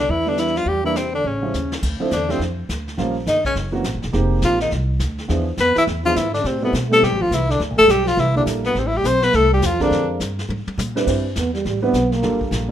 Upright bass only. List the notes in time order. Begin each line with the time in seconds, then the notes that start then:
0.09 E2
0.66 E2
1.24 A1
1.54 D#2
1.83 D2
2.01 muted upright bass stroke
2.11 E2
2.39 F2
2.69 D2
2.98 A#1
3.27 G1
3.55 F#1
3.85 A#1
3.94 F#1
4.04 E1
4.14 F1
4.42 A#1
4.72 C2
5.00 D2
5.29 E2
5.57 F2
5.76 muted upright bass stroke
5.87 E2
6.16 G#2
6.44 A2
6.73 B2
7.02 B1
7.12 A1
7.22 G1
7.31 C2
7.60 D2
7.70 A#1
7.79 G1
7.88 B1
8.17 C2
8.46 A#1
8.75 A1
9.04 B1
9.34 C2
9.62 E2
9.91 F2
10.20 G2
10.49 G#2
10.67 muted upright bass stroke
10.78 A#2
11.07 G2
11.37 E2
11.65 A1
11.93 B1
12.23 G1
12.51 A#1